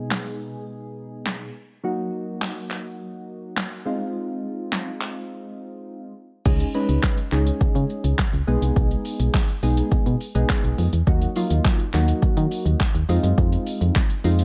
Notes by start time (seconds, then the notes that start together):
Already playing: B2 G#3 B3 D#4 G#4
0.11 snare, clap
1.26 snare, clap
1.83 F#3 A#3 D#4 F#4
2.41 snare, clap
2.71 clap
3.57 snare, clap
3.85 G#3 C4 D#4 F4
4.72 snare, clap
5.01 clap
6.45 C#2 G#3 C#4 D#4 G#4, kick, crash, shaker
6.60 closed hi-hat, shaker
6.74 G#3 C#4 D#4 B4, shaker
6.89 C#2, closed hi-hat, shaker
7.03 kick, snare, clap, shaker
7.18 closed hi-hat, shaker
7.32 C#2 G#3 C#4 D#4 G#4, clap, shaker
7.47 closed hi-hat, shaker
7.61 C#3, kick, shaker
7.75 C#3, closed hi-hat, shaker
7.90 shaker
8.04 C#2, closed hi-hat, shaker
8.18 kick, snare, clap, shaker
8.33 C#2, closed hi-hat, shaker
8.47 B1 G#3 B3 D#4 G#4, shaker
8.62 C2, closed hi-hat, shaker
8.76 B1, kick, shaker
8.91 closed hi-hat, shaker
9.05 open hi-hat, shaker
9.20 B1, closed hi-hat, shaker
9.34 kick, snare, clap, shaker
9.48 closed hi-hat, shaker
9.63 B1 G#3 B3 D#4 G#4, open hi-hat, shaker
9.77 closed hi-hat, shaker
9.91 B2, kick, shaker
10.06 B2, closed hi-hat, shaker
10.21 open hi-hat, shaker
10.35 B1 G#3 B3 D#4 G#4, closed hi-hat, shaker
10.49 kick, snare, clap, shaker
10.64 B1, closed hi-hat, shaker
10.78 F2, open hi-hat, shaker
10.93 E2, closed hi-hat, shaker
11.07 D#2 F#3 A#3 D#4 F#4, kick, shaker
11.22 closed hi-hat, shaker
11.36 F#3 A#3 D#4 F4, open hi-hat, shaker
11.50 D#2, closed hi-hat, shaker
11.64 kick, snare, clap, shaker
11.79 closed hi-hat, shaker
11.94 D#2 F#3 A#3 D#4 F#4, clap, open hi-hat, shaker
12.08 closed hi-hat, shaker
12.22 D#3, kick, shaker
12.37 D#3, closed hi-hat, shaker
12.51 open hi-hat, shaker
12.66 D#2, closed hi-hat, shaker
12.80 kick, snare, clap, shaker
12.95 D#2, closed hi-hat, shaker
13.09 F2 G#3 C4 D#4 F4, open hi-hat, shaker
13.23 F#2, closed hi-hat, shaker
13.38 F2, kick, shaker
13.52 closed hi-hat, shaker
13.67 open hi-hat, shaker
13.81 F2, closed hi-hat, shaker
13.95 kick, snare, clap, shaker
14.10 closed hi-hat, shaker
14.24 F2 G#3 C4 D#4 F4, open hi-hat, shaker
14.39 closed hi-hat, shaker